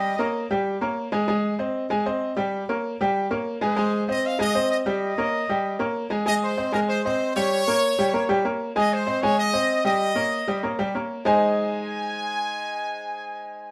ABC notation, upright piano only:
X:1
M:4/4
L:1/8
Q:1/4=192
K:Ab
V:1 name="Upright piano"
[G,Gg] [B,Bd]2 [G,Gg]2 [B,Bd]2 [A,Aa] | [A,Aa]2 [Cce]2 [A,Aa] [Cce]2 [G,Gg]- | [G,Gg] [B,Bd]2 [G,Gg]2 [B,Bd]2 [A,Aa] | [A,Aa]2 [Cce]2 [A,Aa] [Cce]2 [G,Gg]- |
[G,Gg] [B,Bd]2 [G,Gg]2 [B,Bd]2 [A,Aa] | [A,Aa]2 [Cce] [A,Aa]2 [Cce]2 [G,Gg]- | [G,Gg] [B,Bd]2 [G,Gg] [B,Bd] [G,Gg] [B,Bd]2 | [A,Aa]2 [Cce] [A,Aa]2 [Cce]2 [G,Gg]- |
[G,Gg] [B,Bd]2 [G,Gg] [B,Bd] [G,Gg] [B,Bd]2 | [A,EAcea]8- | [A,EAcea]8 |]